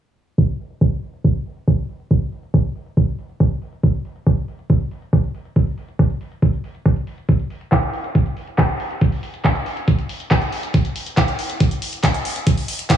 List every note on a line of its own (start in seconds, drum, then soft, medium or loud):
0.38 kick loud
0.38 closed hi-hat medium
0.49 closed hi-hat medium
0.60 open hi-hat loud
0.70 closed hi-hat medium
0.81 kick loud
0.81 closed hi-hat medium
0.92 closed hi-hat medium
1.03 open hi-hat loud
1.14 closed hi-hat medium
1.24 kick loud
1.24 closed hi-hat medium
1.35 closed hi-hat medium
1.46 open hi-hat loud
1.57 closed hi-hat soft
1.68 kick loud
1.68 closed hi-hat medium
1.78 closed hi-hat medium
1.89 open hi-hat loud
2.00 closed hi-hat medium
2.11 kick loud
2.11 closed hi-hat medium
2.22 open hi-hat medium
2.32 open hi-hat loud
2.43 closed hi-hat medium
2.54 kick loud
2.54 closed hi-hat medium
2.65 closed hi-hat soft
2.75 open hi-hat loud
2.86 closed hi-hat soft
2.97 kick loud
2.97 closed hi-hat medium
3.08 closed hi-hat medium
3.19 open hi-hat loud
3.29 closed hi-hat soft
3.40 kick loud
3.40 closed hi-hat medium
3.51 closed hi-hat medium
3.62 open hi-hat loud
3.73 closed hi-hat medium
3.83 kick loud
3.83 closed hi-hat medium
3.94 closed hi-hat medium
4.05 open hi-hat loud
4.16 closed hi-hat medium
4.27 kick loud
4.27 closed hi-hat medium
4.37 closed hi-hat soft
4.48 open hi-hat loud
4.59 closed hi-hat medium
4.70 kick loud
4.70 closed hi-hat medium
4.81 closed hi-hat medium
4.91 open hi-hat loud
5.02 closed hi-hat soft
5.13 kick loud
5.13 closed hi-hat medium
5.24 closed hi-hat medium
5.34 open hi-hat loud
5.45 closed hi-hat soft
5.56 kick loud
5.56 closed hi-hat medium
5.67 open hi-hat medium
5.78 open hi-hat loud
5.88 closed hi-hat medium
5.99 kick loud
5.99 closed hi-hat medium
6.10 closed hi-hat soft
6.21 open hi-hat loud
6.32 closed hi-hat soft
6.42 kick loud
6.42 closed hi-hat medium
6.53 closed hi-hat soft
6.64 open hi-hat loud
6.75 closed hi-hat soft
6.86 kick loud
6.86 closed hi-hat medium
6.96 closed hi-hat soft
7.07 open hi-hat loud
7.18 closed hi-hat soft
7.29 kick loud
7.29 closed hi-hat medium
7.40 closed hi-hat medium
7.50 open hi-hat loud
7.61 closed hi-hat medium
7.72 kick loud
7.72 clap loud
7.72 closed hi-hat medium
7.83 closed hi-hat soft
7.93 open hi-hat medium
8.04 closed hi-hat medium
8.15 kick loud
8.15 closed hi-hat medium
8.26 closed hi-hat soft
8.37 open hi-hat loud
8.47 closed hi-hat soft
8.58 kick loud
8.58 clap loud
8.58 closed hi-hat medium
8.69 closed hi-hat soft
8.80 open hi-hat loud
8.91 closed hi-hat soft
9.01 kick loud
9.01 closed hi-hat medium
9.12 open hi-hat medium
9.23 open hi-hat loud
9.34 closed hi-hat medium
9.45 kick loud
9.45 clap loud
9.45 closed hi-hat medium
9.55 closed hi-hat soft
9.66 open hi-hat medium
9.77 closed hi-hat soft
9.88 kick loud
9.88 closed hi-hat medium
9.99 closed hi-hat medium
10.09 open hi-hat loud
10.20 closed hi-hat medium
10.31 kick loud
10.31 clap loud
10.31 closed hi-hat medium
10.42 closed hi-hat medium
10.52 open hi-hat loud
10.63 closed hi-hat medium
10.74 kick loud
10.74 closed hi-hat medium
10.85 closed hi-hat medium
10.96 open hi-hat loud
11.06 closed hi-hat medium
11.17 kick loud
11.17 clap loud
11.17 closed hi-hat medium
11.28 closed hi-hat medium
11.39 open hi-hat loud
11.50 closed hi-hat medium
11.60 kick loud
11.60 closed hi-hat medium
11.71 closed hi-hat medium
11.82 open hi-hat loud
11.93 closed hi-hat soft
12.04 kick loud
12.04 clap loud
12.04 closed hi-hat medium
12.14 closed hi-hat medium
12.25 open hi-hat loud
12.36 closed hi-hat medium
12.47 kick loud
12.47 closed hi-hat medium
12.58 open hi-hat medium
12.68 open hi-hat loud
12.79 closed hi-hat medium
12.90 kick loud
12.90 clap loud
12.90 closed hi-hat medium